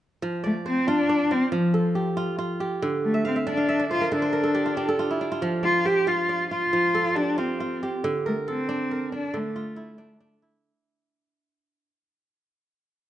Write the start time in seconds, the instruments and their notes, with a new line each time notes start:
0.22 kora F3
0.44 cello A3, kora D5
0.66 cello C4, kora C5
0.87 cello D4, kora F4
1.09 kora D5
1.31 cello C4, kora F4
1.52 kora F3, cello F3
1.74 kora A4
1.95 kora G4
2.17 kora F4
2.38 kora F4
2.60 kora G4
2.82 kora D3
3.05 cello A3
3.14 kora E5
3.25 cello C4, kora F5
3.36 kora E5
3.47 kora D4 D5, cello D4
3.57 kora F5
3.69 kora E5
3.80 kora D5
3.91 cello F4, kora C5
4.01 kora A#4
4.12 kora D3 A4, cello D4
4.22 kora C5
4.33 kora A#4
4.44 kora A4
4.55 kora G4
4.66 kora F4
4.77 kora D4 G4
4.89 kora A4
4.99 kora F4
5.11 kora E4
5.21 kora D4
5.32 kora F4
5.42 kora F3
5.63 cello F4, kora D5
5.85 cello G4, kora C5
6.07 kora F4, cello F4
6.29 kora D5
6.50 cello F4, kora F4
6.73 kora F3
6.95 kora A4
7.15 cello D4, kora G4
7.38 cello C4, kora F4
7.60 kora F4
7.83 kora G4
8.04 kora D3
8.26 cello A3, kora A#4
8.48 cello C4, kora A4
8.69 kora D4
8.91 kora A#4
9.12 kora D4, cello D4
9.34 kora D3, cello A3
9.56 kora F4
9.76 kora E4
9.98 kora D4
10.20 kora D4
10.42 kora E4